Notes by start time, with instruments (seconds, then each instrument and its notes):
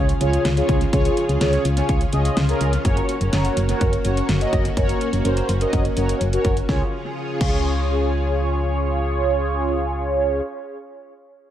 Already playing: fm bass C#2, string machine C#3 C#4 F4 G#4
0.09 closed hi-hat
0.21 fm bass C#2, analog polysynth C#4 F4 G#4 C#5, closed hi-hat
0.33 closed hi-hat
0.45 fm bass C#2, snare, closed hi-hat
0.57 analog polysynth C#4 F4 G#4 C#5, closed hi-hat
0.69 fm bass C#2, kick, closed hi-hat
0.81 closed hi-hat
0.93 fm bass C#2, analog polysynth C#4 F4 G#4 C#5, kick, closed hi-hat
1.05 closed hi-hat
1.17 closed hi-hat
1.29 fm bass C#2, closed hi-hat
1.41 fm bass C#2, analog polysynth C#4 F4 G#4 C#5, snare, closed hi-hat
1.53 closed hi-hat
1.65 fm bass C#2, closed hi-hat
1.77 analog polysynth C#4 F4 G#4 C#5, closed hi-hat
1.89 fm bass C#2, kick, closed hi-hat
2.01 closed hi-hat
2.13 fm bass C#2, analog polysynth C#4 F4 G#4 D#5, closed hi-hat
2.25 closed hi-hat
2.37 fm bass C#2, snare, closed hi-hat
2.49 analog polysynth C#4 F4 G#4 A#4, closed hi-hat
2.61 fm bass C#2, closed hi-hat
2.73 closed hi-hat
2.85 fm bass F#1, string machine A#3 F#4, analog polysynth C#4 F#4 A#4 C#5, kick, closed hi-hat
2.97 closed hi-hat
3.09 closed hi-hat
3.21 fm bass F#1, closed hi-hat
3.33 fm bass F#1, analog polysynth C#4 F#4 A#4 C#5, snare, closed hi-hat
3.45 closed hi-hat
3.57 fm bass F#1, closed hi-hat
3.69 analog polysynth C#4 F#4 A#4 C#5, closed hi-hat
3.81 fm bass F#1, kick, closed hi-hat
3.93 closed hi-hat
4.05 fm bass F#1, analog polysynth C#4 F#4 A#4 C#5, closed hi-hat
4.17 closed hi-hat
4.29 fm bass F#1, snare, closed hi-hat
4.41 analog polysynth C#4 F#4 A#4 D#5, closed hi-hat
4.53 fm bass F#1, kick, closed hi-hat
4.65 closed hi-hat
4.77 fm bass F#1, string machine C#4, analog polysynth C#4 F#4 A#4 C#5, kick, closed hi-hat
4.89 closed hi-hat
5.01 closed hi-hat
5.13 fm bass F#1, closed hi-hat
5.25 fm bass F#1, analog polysynth C#4 F#4 A#4 C5, closed hi-hat
5.37 closed hi-hat
5.49 fm bass F#1, closed hi-hat
5.61 analog polysynth C#4 F#4 A#4 D#5, closed hi-hat
5.73 fm bass F#1, kick, closed hi-hat
5.85 closed hi-hat
5.97 fm bass F#1, analog polysynth C#4 F#4 A#4 C#5, closed hi-hat
6.09 closed hi-hat
6.21 fm bass F#1, closed hi-hat
6.33 analog polysynth C#4 F#4 A#4 C#5, closed hi-hat
6.45 fm bass F#1, kick, closed hi-hat
6.57 closed hi-hat
6.69 fm bass C#2, string machine C#3 C#4 F4 G#4, analog polysynth C#4 F4 G#4 C#5, kick, snare
7.41 fm bass C#2, analog polysynth C#4 F4 G#4 C#5, kick, crash